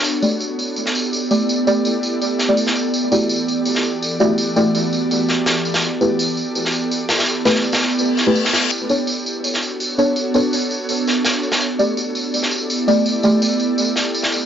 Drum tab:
TB |x-x-x-x-x-x-x-x-|x-x-x-x-x-x-x-x-|x-x-x-x-x-x-x-x-|x-x-x-x-x-x-x-xx|
SD |---------o------|----------o--o--|---------o------|----------o-o--o|

TB |x-x-x-x-x-x-x-xx|x-x-xx-xx-x-x-x-|x-x-x-x-x-x-x-x-|x-x-x-x-x-x-x-xx|
SD |---------o----oo|--oo-oo---o--oo-|---------o------|----------o-o--o|

TB |x-x-x-x-x-x-x-x-|x-x-x-x-x-x-x-x-|
SD |---------o------|----------o--o--|